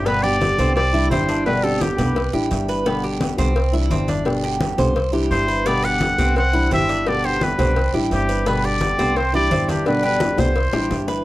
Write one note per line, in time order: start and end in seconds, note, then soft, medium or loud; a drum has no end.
0.00 0.53 G1 medium
0.05 0.40 B2 medium
0.05 0.39 D3 medium
0.05 0.40 G3 medium
0.05 0.23 B3 medium
0.05 0.40 B3 medium
0.05 0.24 D4 medium
0.05 0.41 G4 medium
0.05 0.25 B4 loud
0.05 cowbell loud
0.05 high conga soft
0.05 long guiro medium
0.23 0.75 G4 loud
0.23 0.58 G4 medium
0.23 0.76 D5 loud
0.23 high conga soft
0.40 0.58 D3 medium
0.40 0.58 G3 medium
0.40 0.58 B3 medium
0.40 0.57 G4 medium
0.40 cowbell medium
0.40 high conga loud
0.40 short guiro medium
0.58 1.07 C2 loud
0.58 0.76 D3 medium
0.58 0.75 G3 medium
0.58 0.76 B3 medium
0.58 0.93 C4 medium
0.58 0.75 G4 medium
0.58 cowbell medium
0.58 high conga soft
0.58 short guiro medium
0.76 1.09 G4 medium
0.76 1.09 D5 loud
0.76 muted steel-string acoustic guitar stroke medium
0.76 cowbell loud
0.76 high conga soft
0.76 long guiro medium
0.93 1.10 E3 medium
0.93 1.10 G3 medium
0.93 1.10 D4 medium
0.93 1.10 E4 medium
0.93 1.11 E4 medium
0.93 high conga soft
1.11 1.93 G1 medium
1.11 1.45 E3 medium
1.11 1.46 G3 soft
1.11 1.28 C4 medium
1.11 1.46 D4 medium
1.11 1.44 E4 medium
1.11 1.46 E4 medium
1.11 1.44 C5 medium
1.11 cowbell medium
1.11 high conga medium
1.11 short guiro medium
1.29 1.63 D4 medium
1.29 cowbell medium
1.29 short guiro medium
1.46 1.80 B2 medium
1.46 1.80 D3 medium
1.46 1.81 G3 medium
1.46 1.81 B3 medium
1.46 1.64 D4 medium
1.46 1.81 G4 medium
1.46 1.65 B4 loud
1.46 cowbell loud
1.46 high conga soft
1.46 long guiro medium
1.64 1.82 C4 medium
1.64 1.98 G4 medium
1.64 1.84 A4 medium
1.64 high conga soft
1.81 1.98 D3 medium
1.81 1.98 G3 medium
1.81 2.34 B3 medium
1.81 1.98 B3 medium
1.81 2.34 G4 medium
1.81 1.97 G4 medium
1.81 cowbell medium
1.81 high conga loud
1.81 short guiro medium
1.98 2.31 C2 loud
1.98 2.16 D3 medium
1.98 2.16 G3 medium
1.98 2.16 B3 medium
1.98 2.15 G4 medium
1.98 2.32 B4 medium
1.98 cowbell medium
1.98 low conga medium
1.98 short guiro medium
2.16 muted steel-string acoustic guitar stroke medium
2.16 cowbell loud
2.16 high conga soft
2.16 long guiro medium
2.33 2.50 A1 medium
2.33 2.50 E3 medium
2.33 2.50 G3 medium
2.33 2.51 D4 medium
2.33 2.50 E4 medium
2.33 2.67 G4 medium
2.33 high conga soft
2.51 3.33 G1 medium
2.51 2.85 E3 medium
2.51 2.85 G3 medium
2.51 2.86 D4 medium
2.51 2.86 E4 medium
2.51 cowbell medium
2.51 high conga soft
2.51 short guiro medium
2.68 2.86 B4 medium
2.68 high conga soft
2.68 short guiro medium
2.85 3.20 B2 medium
2.85 3.19 D3 medium
2.85 3.20 G3 medium
2.85 3.03 B3 medium
2.85 3.21 B3 medium
2.85 3.21 G4 medium
2.85 cowbell loud
2.85 high conga soft
2.85 long guiro medium
3.03 3.38 G4 medium
3.03 high conga soft
3.21 3.38 D3 soft
3.21 3.38 G3 medium
3.21 3.37 B3 medium
3.21 3.36 G4 medium
3.21 cowbell medium
3.21 high conga loud
3.21 short guiro medium
3.37 3.87 C2 loud
3.37 3.55 D3 medium
3.37 3.54 G3 medium
3.37 3.55 B3 medium
3.37 3.72 C4 medium
3.37 3.55 G4 medium
3.37 cowbell medium
3.37 high conga soft
3.37 short guiro medium
3.55 muted steel-string acoustic guitar stroke medium
3.55 cowbell loud
3.55 high conga soft
3.55 long guiro medium
3.73 3.89 E3 medium
3.73 3.89 G3 medium
3.73 3.90 D4 medium
3.73 3.90 E4 medium
3.73 3.91 E4 medium
3.73 high conga soft
3.90 4.73 G1 medium
3.90 4.25 E3 soft
3.90 4.25 G3 medium
3.90 4.08 C4 medium
3.90 4.25 D4 medium
3.90 4.26 E4 medium
3.90 cowbell medium
3.90 high conga medium
3.90 short guiro medium
4.08 4.43 D4 medium
4.08 cowbell medium
4.08 high conga medium
4.08 short guiro medium
4.25 4.60 B2 medium
4.25 4.59 D3 medium
4.25 4.60 G3 medium
4.25 4.60 B3 medium
4.25 4.61 G4 medium
4.25 cowbell loud
4.25 long guiro medium
4.43 4.78 G4 medium
4.43 high conga soft
4.60 4.78 D3 soft
4.60 4.78 G3 medium
4.60 4.77 B3 medium
4.60 4.77 G4 medium
4.60 cowbell medium
4.60 high conga loud
4.60 short guiro medium
4.78 5.27 C2 medium
4.78 4.96 D3 medium
4.78 4.95 G3 medium
4.78 4.95 B3 medium
4.78 4.95 G4 medium
4.78 5.12 C5 medium
4.78 cowbell medium
4.78 low conga medium
4.78 short guiro medium
4.96 muted steel-string acoustic guitar stroke medium
4.96 cowbell loud
4.96 high conga soft
4.96 long guiro medium
5.12 5.29 E3 medium
5.12 5.30 G3 medium
5.12 5.30 D4 medium
5.12 5.30 E4 medium
5.12 5.47 G4 medium
5.12 high conga soft
5.30 6.13 G1 medium
5.30 5.65 E3 soft
5.30 5.65 G3 medium
5.30 5.66 D4 medium
5.30 5.66 E4 medium
5.30 5.68 C5 loud
5.30 cowbell medium
5.30 high conga soft
5.30 short guiro medium
5.48 5.65 B4 medium
5.48 high conga soft
5.48 short guiro medium
5.65 6.00 B2 medium
5.65 5.99 D3 medium
5.65 6.00 G3 medium
5.65 5.83 B3 medium
5.65 6.01 B3 medium
5.65 5.85 G4 medium
5.65 6.01 G4 medium
5.65 5.86 D5 loud
5.65 cowbell loud
5.65 high conga soft
5.65 long guiro medium
5.83 6.18 G4 medium
5.83 6.37 B4 loud
5.83 6.37 F#5 loud
5.83 high conga soft
6.01 6.18 D3 soft
6.01 6.18 G3 medium
6.01 6.18 B3 medium
6.01 6.17 G4 medium
6.01 cowbell medium
6.01 high conga loud
6.01 short guiro medium
6.18 6.67 C2 medium
6.18 6.36 D3 medium
6.18 6.36 G3 medium
6.18 6.36 B3 medium
6.18 6.52 C4 medium
6.18 6.35 G4 medium
6.18 cowbell medium
6.18 high conga soft
6.18 short guiro medium
6.36 6.70 C5 medium
6.36 6.70 F#5 loud
6.36 muted steel-string acoustic guitar stroke medium
6.36 cowbell loud
6.36 high conga soft
6.36 long guiro medium
6.53 6.70 E3 medium
6.53 6.70 G3 medium
6.53 6.71 D4 medium
6.53 6.70 E4 medium
6.53 high conga soft
6.71 7.53 G1 medium
6.71 7.05 E3 soft
6.71 7.06 G3 medium
6.71 6.88 C4 medium
6.71 7.06 D4 medium
6.71 7.06 E4 medium
6.71 7.05 G4 medium
6.71 7.10 E5 loud
6.71 cowbell medium
6.71 high conga medium
6.71 short guiro medium
6.89 7.23 D4 medium
6.89 cowbell medium
6.89 short guiro medium
7.06 7.40 B2 medium
7.06 7.40 D3 medium
7.06 7.41 G3 medium
7.06 7.41 B3 medium
7.06 7.25 G4 medium
7.06 7.41 G4 medium
7.06 7.27 D5 loud
7.06 cowbell loud
7.06 high conga soft
7.06 long guiro medium
7.24 7.43 E4 medium
7.24 7.58 G4 medium
7.24 7.45 C5 loud
7.24 high conga soft
7.41 7.58 D3 medium
7.41 7.58 G3 medium
7.41 7.58 B3 medium
7.41 7.94 D4 medium
7.41 7.57 G4 medium
7.41 7.95 B4 medium
7.41 cowbell medium
7.41 high conga loud
7.41 short guiro medium
7.58 7.91 C2 medium
7.58 7.76 D3 medium
7.58 7.76 G3 medium
7.58 7.76 B3 medium
7.58 7.93 C4 medium
7.58 7.75 G4 medium
7.58 cowbell medium
7.58 low conga medium
7.58 short guiro medium
7.76 muted steel-string acoustic guitar stroke medium
7.76 cowbell loud
7.76 high conga soft
7.76 long guiro medium
7.94 8.10 A1 medium
7.94 8.10 E3 medium
7.94 8.11 G3 medium
7.94 8.11 D4 medium
7.94 8.11 E4 medium
7.94 8.28 G4 medium
7.94 high conga soft
8.11 8.93 G1 medium
8.11 8.46 E3 medium
8.11 8.46 G3 medium
8.11 8.47 C4 medium
8.11 8.46 D4 medium
8.11 8.47 E4 medium
8.11 8.49 G4 medium
8.11 cowbell medium
8.11 high conga soft
8.11 short guiro medium
8.29 8.46 B4 medium
8.29 high conga soft
8.29 short guiro medium
8.46 8.81 B2 medium
8.46 8.81 D3 medium
8.46 8.81 G3 medium
8.46 8.63 B3 medium
8.46 8.81 B3 medium
8.46 8.65 D4 medium
8.46 8.82 G4 medium
8.46 8.67 B4 medium
8.46 cowbell loud
8.46 high conga soft
8.46 long guiro medium
8.64 8.98 G4 medium
8.64 9.17 G4 medium
8.64 9.19 D5 loud
8.64 high conga soft
8.81 8.98 D3 medium
8.81 8.99 G3 medium
8.81 8.98 B3 medium
8.81 8.97 G4 medium
8.81 cowbell medium
8.81 high conga loud
8.81 short guiro medium
8.98 9.47 C2 medium
8.98 9.16 D3 medium
8.98 9.15 G3 medium
8.98 9.16 B3 medium
8.98 9.33 C4 medium
8.98 9.15 G4 medium
8.98 cowbell medium
8.98 high conga soft
8.98 short guiro medium
9.16 9.34 E4 medium
9.16 9.34 C5 medium
9.16 muted steel-string acoustic guitar stroke medium
9.16 cowbell loud
9.16 high conga soft
9.16 long guiro medium
9.33 9.50 E3 medium
9.33 9.50 G3 medium
9.33 9.50 D4 medium
9.33 9.50 E4 medium
9.33 9.51 E4 medium
9.33 9.70 G4 medium
9.33 9.72 D5 loud
9.33 high conga soft
9.51 10.33 G1 medium
9.51 9.85 E3 medium
9.51 9.86 G3 medium
9.51 9.68 C4 medium
9.51 9.86 D4 medium
9.51 9.86 E4 medium
9.51 cowbell medium
9.51 high conga medium
9.51 short guiro medium
9.68 9.87 B3 medium
9.68 10.03 D4 medium
9.68 9.87 G4 medium
9.68 cowbell medium
9.68 high conga medium
9.68 short guiro medium
9.86 10.20 B2 medium
9.86 10.20 D3 medium
9.86 10.21 G3 medium
9.86 10.21 B3 medium
9.86 10.03 D4 medium
9.86 10.21 G4 medium
9.86 10.03 B4 medium
9.86 cowbell loud
9.86 high conga soft
9.86 long guiro medium
10.03 10.40 D4 medium
10.03 10.37 G4 medium
10.03 10.42 B4 medium
10.03 high conga soft
10.20 10.38 D3 medium
10.20 10.38 G3 medium
10.20 10.38 B3 soft
10.20 10.38 G4 medium
10.20 cowbell medium
10.20 high bongo loud
10.20 high conga loud
10.20 short guiro medium
10.38 10.71 C2 loud
10.38 10.56 D3 medium
10.38 10.56 G3 medium
10.38 10.56 B3 medium
10.38 11.09 E4 medium
10.38 10.55 G4 medium
10.38 10.72 C5 medium
10.38 11.09 C5 medium
10.38 cowbell medium
10.38 high bongo loud
10.38 low conga medium
10.38 short guiro medium
10.55 muted steel-string acoustic guitar stroke medium
10.55 cowbell loud
10.55 high conga soft
10.55 long guiro medium
10.73 10.89 E3 medium
10.73 10.90 G3 medium
10.73 10.90 D4 medium
10.73 10.90 E4 medium
10.73 11.07 G4 medium
10.73 low bongo loud
10.73 high conga soft
10.90 11.24 G1 medium
10.90 11.24 E3 medium
10.90 11.24 G3 medium
10.90 11.24 D4 medium
10.90 11.24 E4 medium
10.90 cowbell medium
10.90 low bongo medium
10.90 high conga soft
10.90 short guiro medium
11.08 11.24 B4 medium
11.08 low bongo medium
11.08 high conga soft
11.08 short guiro medium